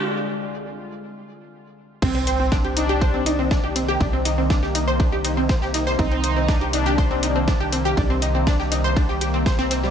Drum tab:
CC |----------------|x---------------|----------------|----------------|
RD |----------------|xxx-xxxxx-x-x-x-|x-x-x-x-x-x-x-x-|xxx-xxxxx-x-x-x-|
HH |----------------|--o---o---o---o-|--o---o---o---o-|--o---o---o---o-|
SD |----------------|----o-------o---|----oo------oooo|----o-------o---|
BD |----------------|o---o---o---o---|o---o---o---o---|o---o---o---o---|

CC |----------------|
RD |x-x-x-x-x-x-x-x-|
HH |--o---o---o---o-|
SD |----oo------oooo|
BD |o---o---o---o---|